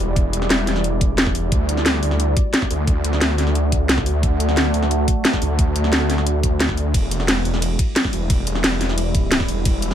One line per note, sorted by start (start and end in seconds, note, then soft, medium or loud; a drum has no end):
0.00 0.49 E1 loud
0.00 1.48 G3 medium
0.00 1.48 E4 medium
0.00 6.90 D5 medium
0.16 kick loud
0.16 closed hi-hat medium
0.33 closed hi-hat medium
0.42 snare soft
0.50 0.66 E1 loud
0.50 snare loud
0.50 closed hi-hat medium
0.67 1.51 E1 loud
0.67 snare soft
0.67 open hi-hat medium
0.76 snare soft
0.84 closed hi-hat medium
1.01 kick loud
1.01 closed hi-hat medium
1.18 snare loud
1.18 closed hi-hat medium
1.26 kick medium
1.26 snare soft
1.35 open hi-hat medium
1.52 2.01 D2 medium
1.52 6.90 A3 medium
1.52 6.90 F#4 medium
1.52 kick loud
1.52 closed hi-hat medium
1.69 closed hi-hat medium
1.77 snare soft
1.86 snare loud
1.86 closed hi-hat medium
2.03 2.35 D2 loud
2.03 open hi-hat medium
2.11 snare soft
2.20 closed hi-hat medium
2.37 kick loud
2.37 closed hi-hat medium
2.54 snare loud
2.54 closed hi-hat medium
2.62 kick medium
2.62 snare soft
2.71 3.20 D2 loud
2.71 open hi-hat medium
2.87 kick loud
2.87 closed hi-hat medium
3.04 closed hi-hat medium
3.13 snare soft
3.21 3.80 D2 loud
3.21 snare loud
3.21 closed hi-hat medium
3.38 snare soft
3.38 open hi-hat medium
3.47 snare soft
3.55 closed hi-hat medium
3.72 kick loud
3.72 closed hi-hat medium
3.80 4.05 C#2 loud
3.89 snare loud
3.89 closed hi-hat medium
3.98 kick medium
3.98 snare soft
4.06 4.22 D2 loud
4.06 open hi-hat medium
4.23 4.73 D2 medium
4.23 kick loud
4.23 closed hi-hat medium
4.40 closed hi-hat medium
4.49 snare soft
4.57 snare loud
4.57 closed hi-hat medium
4.74 5.07 D2 loud
4.74 open hi-hat medium
4.83 snare soft
4.91 closed hi-hat medium
5.08 kick loud
5.08 closed hi-hat medium
5.25 snare loud
5.25 closed hi-hat medium
5.33 kick medium
5.33 snare soft
5.42 5.91 D2 loud
5.42 open hi-hat medium
5.59 kick loud
5.59 closed hi-hat medium
5.76 closed hi-hat loud
5.84 snare soft
5.93 6.42 D2 loud
5.93 snare loud
5.93 closed hi-hat medium
6.10 snare soft
6.10 open hi-hat medium
6.18 snare soft
6.27 closed hi-hat medium
6.43 6.93 D2 loud
6.43 kick loud
6.43 closed hi-hat medium
6.60 snare loud
6.60 closed hi-hat medium
6.69 kick medium
6.69 snare soft
6.77 open hi-hat medium
6.94 7.44 E1 medium
6.94 9.94 G3 medium
6.94 9.94 E4 medium
6.94 9.63 D5 medium
6.94 kick loud
6.94 closed hi-hat medium
6.94 ride medium
7.11 closed hi-hat loud
7.20 snare soft
7.28 snare loud
7.28 closed hi-hat medium
7.28 ride medium
7.45 7.78 E1 loud
7.45 open hi-hat medium
7.54 snare soft
7.62 closed hi-hat medium
7.62 ride medium
7.79 kick loud
7.79 closed hi-hat medium
7.96 snare loud
7.96 closed hi-hat medium
7.96 ride medium
8.04 kick medium
8.04 snare medium
8.13 8.62 E1 loud
8.13 open hi-hat medium
8.30 kick loud
8.30 closed hi-hat medium
8.30 ride medium
8.47 closed hi-hat loud
8.55 snare soft
8.64 9.47 E1 loud
8.64 snare loud
8.64 closed hi-hat medium
8.64 ride medium
8.81 snare soft
8.81 open hi-hat medium
8.89 snare soft
8.98 closed hi-hat medium
8.98 ride medium
9.15 kick loud
9.15 closed hi-hat medium
9.32 snare loud
9.32 closed hi-hat medium
9.32 ride medium
9.40 kick medium
9.40 snare medium
9.48 9.64 E1 loud
9.48 open hi-hat medium
9.65 9.94 E1 medium
9.65 kick loud
9.65 closed hi-hat medium
9.65 ride medium
9.82 closed hi-hat medium
9.91 snare soft